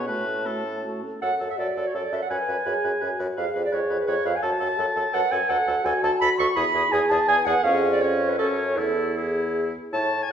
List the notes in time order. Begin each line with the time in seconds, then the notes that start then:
0.07 A2 A3 F#4 B4 A5
0.27 C#4 A4
0.46 A3 F#4 A4
0.64 C#4 A4
0.84 A3 F#4
1.03 C#4 A4
1.22 F#2 A4 F#5
1.40 F#2 A4
1.49 E5
1.58 F#2 F#4 A4 D5
1.76 F#2 A4
1.85 C#5
1.94 F#2 A4 D5
2.12 F#2 A4 E5
2.22 F#5
2.30 F#2 B4 G#5
2.48 F#2 B4
2.66 F#2 G#4 B4
2.84 F#2 B4
3.01 F#2 F#4 B4
3.19 F#2 B4
3.37 F2 G#4 B4 F5
3.55 F2 B4
3.65 D5
3.72 F2 B4 C#5
3.90 F2 B4
3.99 B4
4.07 F2 B4 C#5
4.25 F2 B4 F5
4.35 G#5
4.42 F#2 F#4 A4 A5
4.60 F#2 A4
4.78 F#2 A4
4.96 F#2 A4
5.13 F#2 A4 B4 F#5
5.31 F#2 A4 G#5
5.49 D2 A4 F#5
5.67 D2 A4
5.84 D2 F#4 A4 G#5
6.02 D2 A4 A5
6.20 D2 A4 B5
6.38 D2 A4 C#6
6.55 E2 E4 G#4 B5
6.74 E2 G#4
6.91 E2 G#4 G#5
7.09 E2 G#4 A5
7.27 E2 G#4 B4 G#5
7.45 E2 G#4 F#5
7.63 F2 C#4 G#4 F5
7.90 D5
8.00 C#4 C#5
8.28 B4
8.38 F#2 C#4 A4
8.57 C#5
8.76 E2 E4 A4
9.16 E4 G#4
9.93 A2 E4 C#5 A5
10.23 G#5